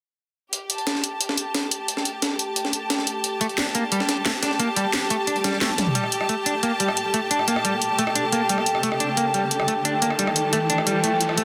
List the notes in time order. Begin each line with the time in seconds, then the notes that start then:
0.53 G4 A4 G5, closed hi-hat
0.70 A5, closed hi-hat
0.78 closed hi-hat
0.87 snare, closed hi-hat
0.95 snare
1.04 closed hi-hat
1.21 closed hi-hat
1.29 snare
1.38 closed hi-hat
1.54 snare, closed hi-hat, open hi-hat
1.71 closed hi-hat
1.88 closed hi-hat
1.97 snare
2.05 closed hi-hat
2.22 snare, closed hi-hat
2.39 closed hi-hat
2.56 closed hi-hat
2.65 snare
2.73 closed hi-hat
2.90 snare, closed hi-hat
2.99 snare
3.07 closed hi-hat
3.24 closed hi-hat
3.41 A3, closed hi-hat
3.49 closed hi-hat
3.58 D4, snare, closed hi-hat
3.66 snare
3.75 A#3, closed hi-hat
3.92 G3, closed hi-hat
4.00 snare
4.09 snare, closed hi-hat
4.26 A3, snare, closed hi-hat
4.43 D4, snare, closed hi-hat
4.51 snare
4.60 A#3, closed hi-hat
4.76 G3, closed hi-hat
4.93 snare, closed hi-hat
5.10 A3, closed hi-hat
5.27 D4, closed hi-hat, swell
5.36 closed hi-hat
5.44 G3, snare, closed hi-hat
5.53 snare
5.61 A3, snare, closed hi-hat
5.70 high tom
5.78 snare, closed hi-hat, mid tom
5.87 mid tom
5.95 G3 A4 G5, closed hi-hat, riser
6.04 cross-stick
6.12 closed hi-hat
6.21 cross-stick
6.29 A3, closed hi-hat
6.46 D4, closed hi-hat
6.63 A#3, closed hi-hat
6.80 G3, closed hi-hat
6.88 cross-stick
6.97 closed hi-hat
7.14 A3, closed hi-hat
7.31 D4, closed hi-hat
7.39 cross-stick
7.48 A#3, closed hi-hat
7.56 cross-stick
7.65 G3, closed hi-hat
7.82 closed hi-hat
7.99 A3, closed hi-hat
8.07 cross-stick
8.15 D4, closed hi-hat
8.32 A#3, closed hi-hat
8.49 G3, closed hi-hat
8.58 cross-stick
8.66 closed hi-hat
8.75 cross-stick
8.83 A3, closed hi-hat
8.92 cross-stick
9.00 D4, closed hi-hat
9.17 A#3, closed hi-hat
9.34 G3, closed hi-hat
9.51 closed hi-hat
9.60 cross-stick
9.68 A3, closed hi-hat
9.85 D4, closed hi-hat
10.02 A#3, closed hi-hat
10.10 cross-stick
10.19 G3, closed hi-hat
10.27 cross-stick
10.36 closed hi-hat
10.53 A3, closed hi-hat
10.70 D4, closed hi-hat
10.78 cross-stick
10.87 G3, closed hi-hat
11.04 A3, closed hi-hat
11.21 closed hi-hat
11.29 cross-stick
11.37 A3 C6, closed hi-hat